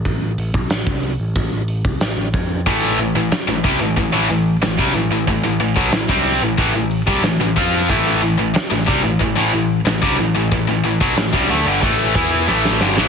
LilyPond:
<<
  \new Staff \with { instrumentName = "Distorted electric guitar" } { \clef bass \time 4/4 \key a \minor \tempo 4 = 92 r1 | <a, e a>8 <a, e>16 <a, e>16 r16 <a, e>16 <c g>16 <a, e>16 <a, e>16 <a, e>16 <a, e>8 <a, e>16 <c g>16 <a, e>16 <a, e>16 | <a, e>16 <a, e>16 <a, e>16 <b, fis>16 <a, e>16 <c g c'>8 <a, e>16 <a, e>16 <a, e>8 <c g>16 <a, e>16 <a, e>16 <f c' f'>8 | <a, e a>8 <a, e>16 <a, e>16 r16 <a, e>16 <c g>16 <a, e>16 <a, e>16 <a, e>16 <a, e>8 <a, e>16 <c g>16 <a, e>16 <a, e>16 |
<a, e>16 <a, e>16 <a, e>16 <b, fis>16 <a, e>16 <c g>16 <d a>16 <g, d>16 <a, e a>8 <e b e'>8 <a, e a>8 <g, d>16 <a, e>16 | }
  \new Staff \with { instrumentName = "Distorted electric guitar" } { \clef bass \time 4/4 \key a \minor r1 | <a, e a>8 <a, e>16 <a, e>16 r16 <a, e>16 <c g>16 <a, e>16 <a, e>16 <a, e>16 <a, e>8 <a, e>16 <c g>16 <a, e>16 <a, e>16 | <a, e>16 <a, e>16 <a, e>16 <b, fis>16 <a, e>16 <c g c'>8 <a, e>16 <a, e>16 <a, e>8 <c g>16 <a, e>16 <a, e>16 <f c' f'>8 | <a, e a>8 <a, e>16 <a, e>16 r16 <a, e>16 <c g>16 <a, e>16 <a, e>16 <a, e>16 <a, e>8 <a, e>16 <c g>16 <a, e>16 <a, e>16 |
<a, e>16 <a, e>16 <a, e>16 <b, fis>16 <a, e>16 <c g>16 <d a>16 <g, d>16 <a, e a>8 <e b e'>8 <a, e a>8 <g, d>16 <a, e>16 | }
  \new Staff \with { instrumentName = "Picked electric bass" } { \clef bass \time 4/4 \key a \minor a,,16 a,,16 a,,16 b,,16 a,,16 c,8 a,,16 a,,16 a,,8 c,16 a,,16 a,,16 f,8 | a,,8 a,,16 a,,16 r16 a,,16 c,16 a,,16 a,,16 a,,16 a,,8 a,,16 c,16 a,,16 a,,16 | a,,16 a,,16 a,,16 b,,16 a,,16 c,8 a,,16 a,,16 a,,8 c,16 a,,16 a,,16 f,8 | a,,8 a,,16 a,,16 r16 a,,16 c,16 a,,16 a,,16 a,,16 a,,8 a,,16 c,16 a,,16 a,,16 |
a,,16 a,,16 a,,16 b,,16 a,,16 c,16 d,16 g,,16 a,,8 e,8 a,,8 g,,16 a,,16 | }
  \new DrumStaff \with { instrumentName = "Drums" } \drummode { \time 4/4 <hho bd>8 hho16 bd16 <hho sn>16 bd16 hho8 <hho bd>8 hho16 bd16 <hho sn>8 <hho bd>8 | <hho bd>8 hho8 <hho sn>16 sn16 <hho bd>8 <hho bd>8 hho8 <hho sn>16 bd16 hho8 | <hho bd>8 hho16 bd16 <hho sn>16 bd16 hho8 <hho bd>8 hho16 bd16 <hho sn>8 <hho bd>16 sn16 | <hho bd>8 hho8 <hho sn>16 sn16 <hho bd>8 <hho bd>8 hho8 <hho sn>16 bd16 hho8 |
<hho bd>8 hho16 bd16 <hho sn>16 bd16 hho8 <hho bd>8 <hho bd>8 sn16 sn16 sn16 sn16 | }
>>